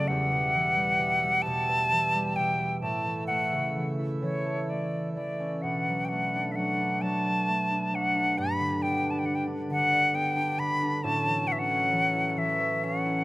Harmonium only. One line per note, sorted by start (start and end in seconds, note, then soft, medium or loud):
0.09 2.78 G3 medium
0.09 2.79 G4 medium
0.09 2.78 E5 medium
2.82 8.34 A3 medium
2.82 5.61 E4 medium
2.82 5.61 E5 medium
5.64 8.35 D4 soft
5.64 11.00 B4 medium
8.36 11.00 G3 medium
8.36 11.00 D4 medium
11.03 13.24 F#3 medium
11.03 13.24 C#4 medium
11.03 13.24 A4 medium